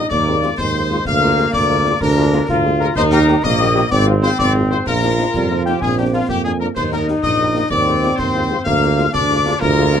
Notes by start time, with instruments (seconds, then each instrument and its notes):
0.09 tuba D#2, trombone section A#3, trumpet section D5, woodwind section D5, piccolo D6, concert bass drum, snare
0.27 french horn section G#3 C4 F4
0.42 french horn section G#3 C4 F4, snare
0.58 tuba D#2, trombone section G#3, woodwind section C5, trumpet section C5, piccolo C6, concert bass drum, snare
0.74 french horn section G#3 C4 F4
0.90 french horn section G#3 C4 F4
1.05 tuba D2, trombone section A#3, trumpet section F5, woodwind section F5, piccolo F6, concert bass drum, snare, crash
1.22 french horn section G#3 A#3 F4, snare
1.38 french horn section G#3 A#3 F4, snare
1.53 tuba D2, trumpet section D5, woodwind section D5, piccolo D6, concert bass drum, snare
1.69 french horn section G#3 A#3 F4
1.85 french horn section G#3 A#3 F4, snare
2.00 tuba D2, trombone section D4, woodwind section A#4, trumpet section A#4, piccolo A#5, concert bass drum, snare
2.17 french horn section G#3 A#3 F4
2.32 french horn section G#3 A#3 F4, snare
2.49 tuba D2, trombone section F4, concert bass drum, snare
2.64 french horn section G#3 A#3 F4
2.79 french horn section G#3 A#3 F4, trumpet section A#4, woodwind section A#4, piccolo A#5
2.96 tuba D#2, trombone section D#4, trumpet section C5, woodwind section C5, piccolo C6, concert bass drum, snare, crash
3.11 french horn section G3 A#3 G4, trumpet section A#4, woodwind section A#4, piccolo A#5, snare
3.28 french horn section G3 A#3 G4, snare
3.43 tuba A#1, trombone section A#3, trumpet section D#5, woodwind section D#5, piccolo D#6, concert bass drum, snare
3.59 french horn section G3 A#3 G4
3.74 french horn section G3 A#3 G4, snare
3.91 tuba G#1, trombone section C4, woodwind section D5, trumpet section D5, piccolo D6, concert bass drum, snare
4.06 french horn section G#3 C4 F4
4.22 french horn section G#3 C4 F4, trumpet section C5, woodwind section C5, piccolo C6, snare
4.38 tuba G#1, trumpet section D5, woodwind section D5, piccolo D6, concert bass drum, snare
4.54 french horn section G#3 C4 F4
4.71 french horn section G#3 C4 F4, woodwind section C5, trumpet section C5, piccolo C6
4.86 tuba A#1, trombone section F4, trumpet section A#4, woodwind section A#4, piccolo A#5, concert bass drum, snare, crash
5.03 french horn section F3 A#3 D#4, snare
5.18 french horn section F3 A#3 D#4, snare
5.34 tuba F2, euphonium G3, concert bass drum, snare
5.50 euphonium F3, french horn section F3 A#3 D#4
5.65 french horn section F3 A#3 D#4, trumpet section G4, woodwind section G4, piccolo G5, snare
5.80 tuba A#1, euphonium C4, trumpet section G#4, woodwind section G#4, piccolo G#5, concert bass drum, snare
5.97 french horn section F3 A#3 D4, woodwind section G4, trumpet section G4, piccolo G5
6.13 french horn section F3 A#3 D4, woodwind section F4, trumpet section F4, piccolo F5
6.28 tuba F2, euphonium A#3, woodwind section G4, trumpet section G4, piccolo G5, concert bass drum, snare
6.44 french horn section F3 A#3 D4, woodwind section G#4, trumpet section G#4, piccolo G#5
6.60 french horn section F3 A#3 D4, trumpet section A#4, woodwind section A#4, piccolo A#5
6.76 tuba D#2, trombone section D#4, trumpet section C5, woodwind section C5, piccolo C6, concert bass drum, snare, crash
6.92 french horn section G3 A#3 D#4, trumpet section A#4, woodwind section A#4, piccolo A#5, snare
7.08 french horn section G3 A#3 D#4, snare
7.23 tuba A#1, woodwind section D#5, trumpet section D#5, piccolo D#6, concert bass drum, snare
7.39 french horn section G3 A#3 D#4
7.54 french horn section G3 A#3 D#4, snare
7.70 tuba D#2, trombone section C4, trumpet section D5, woodwind section D5, piccolo D6, concert bass drum, snare
7.87 french horn section G#3 C4 F4
8.02 french horn section G#3 C4 F4, snare
8.17 tuba D#2, trumpet section C5, woodwind section C5, piccolo C6, concert bass drum, snare
8.35 french horn section G#3 C4 F4
8.50 french horn section G#3 C4 F4
8.65 tuba D2, trombone section A#3, trumpet section F5, woodwind section F5, piccolo F6, concert bass drum, snare, crash
8.82 french horn section G#3 A#3 F4, snare
8.98 french horn section G#3 A#3 F4, snare
9.12 tuba D2, trombone section D4, woodwind section D5, trumpet section D5, piccolo D6, concert bass drum, snare
9.30 french horn section G#3 A#3 F4
9.46 french horn section G#3 A#3 F4, snare
9.60 tuba D2, trombone section F4, woodwind section A#4, trumpet section A#4, piccolo A#5, concert bass drum, snare
9.77 french horn section G#3 A#3 F4
9.93 french horn section G#3 A#3 F4, snare